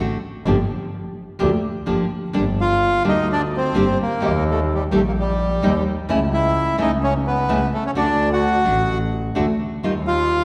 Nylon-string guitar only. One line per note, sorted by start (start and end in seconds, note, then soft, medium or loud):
0.00 0.16 D3 medium
0.00 0.17 A3 medium
0.00 0.17 C4 medium
0.00 0.17 F#4 medium
0.46 0.55 D3 medium
0.46 0.55 F3 medium
0.46 0.55 A#3 medium
0.46 0.56 D4 medium
0.46 0.56 G4 medium
1.39 1.49 D3 medium
1.39 1.49 F3 medium
1.39 1.49 A#3 medium
1.39 1.49 D4 medium
1.39 1.49 G4 medium
1.86 2.04 D3 medium
1.86 2.04 F3 medium
1.86 2.04 A#3 medium
1.86 2.04 D4 medium
1.86 2.04 G4 medium
2.33 2.43 D3 medium
2.33 2.43 G3 medium
2.33 2.43 A#3 medium
2.33 2.43 D4 medium
2.33 2.43 G4 medium
3.04 3.13 D3 medium
3.04 3.14 G3 medium
3.04 3.13 A#3 medium
3.04 3.14 D4 medium
3.04 3.14 G4 medium
3.74 3.84 D3 medium
3.74 3.84 G3 medium
3.74 3.84 A#3 loud
3.74 3.84 D4 medium
3.74 3.85 G4 loud
4.20 4.30 D#3 medium
4.20 4.31 G3 medium
4.20 4.31 A#3 medium
4.20 4.31 D#4 medium
4.20 4.31 G4 loud
4.91 5.01 D#3 medium
4.91 5.01 G3 medium
4.91 5.01 A#3 loud
4.91 5.01 D#4 medium
4.91 5.01 G4 loud
5.62 5.71 D#3 medium
5.62 5.72 G3 medium
5.62 5.72 A#3 medium
5.62 5.72 D#4 loud
5.62 5.72 G4 loud
6.09 6.18 C#3 medium
6.09 6.18 E3 loud
6.09 6.18 A3 medium
6.09 6.18 C#4 loud
6.09 6.18 E4 loud
6.78 6.87 C#3 medium
6.78 6.88 E3 medium
6.78 6.88 A3 medium
6.78 6.88 C#4 medium
6.78 6.88 E4 loud
7.49 7.58 C#3 loud
7.49 7.58 E3 medium
7.49 7.58 A3 medium
7.49 7.58 C#4 medium
7.49 7.58 E4 loud
7.95 8.04 D3 medium
7.95 8.05 A3 medium
7.95 8.05 D4 medium
7.95 8.05 F#4 loud
8.64 8.74 D3 medium
8.64 8.74 A3 medium
8.64 8.75 D4 medium
8.64 8.75 F#4 medium
9.35 9.45 D3 medium
9.35 9.45 A3 medium
9.35 9.45 D4 medium
9.35 9.45 F#4 loud
9.83 9.92 D#3 medium
9.83 9.92 G3 medium
9.83 9.93 D#4 medium
9.83 9.93 F4 medium